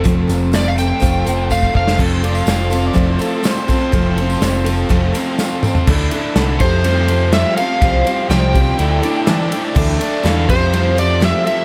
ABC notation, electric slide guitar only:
X:1
M:4/4
L:1/16
Q:1/4=124
K:F
V:1 name="Electric slide guitar"
z4 d f g6 f2 f2 | z16 | z16 | z6 c6 e2 f2- |
f4 g8- g2 z2 | z6 c4 d2 e2 e2 |]